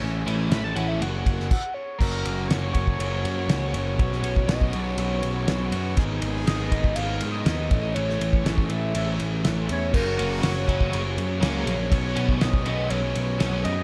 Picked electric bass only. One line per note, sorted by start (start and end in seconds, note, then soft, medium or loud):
0.02 0.26 A1 loud
0.27 0.50 A1 medium
0.51 0.75 A1 loud
0.75 1.00 A1 medium
1.01 1.25 F#1 medium
1.26 1.50 F#1 medium
2.00 2.24 F#1 loud
2.25 2.49 F#1 medium
2.50 2.74 F#1 loud
2.75 2.99 F#1 medium
2.99 3.23 F#1 medium
3.24 3.47 F#2 medium
3.48 3.72 C#2 loud
3.73 4.00 F#1 medium
4.00 4.22 B1 loud
4.22 4.47 B1 medium
4.48 4.72 B1 loud
4.73 4.97 B1 medium
4.98 5.21 B1 medium
5.24 5.47 B1 medium
5.47 5.71 B1 loud
5.72 5.96 F#2 medium
5.97 6.21 G#1 loud
6.22 6.45 G#1 loud
6.47 6.71 G#1 loud
6.72 6.95 G#1 medium
6.97 7.20 G#1 medium
7.22 7.45 G#2 medium
7.46 7.69 D#2 loud
7.71 7.95 A1 medium
7.96 8.19 A1 loud
8.20 8.44 A1 medium
8.45 8.69 A1 loud
8.70 8.93 A1 medium
8.95 9.18 A1 medium
9.21 9.44 A1 medium
9.46 9.69 A1 loud
9.70 9.93 E2 loud
9.94 10.17 F#1 loud
10.19 10.43 F#1 loud
10.44 10.67 F#1 loud
10.68 10.92 F#1 medium
10.93 11.17 F#1 medium
11.17 11.41 F#2 medium
11.42 11.66 C#2 loud
11.66 11.90 A#1 loud
11.92 12.16 B1 loud
12.17 12.40 B1 loud
12.43 12.66 B1 loud
12.66 12.90 B1 medium
12.91 13.14 B1 loud
13.16 13.39 B1 loud
13.40 13.64 B1 loud
13.65 13.83 F#2 loud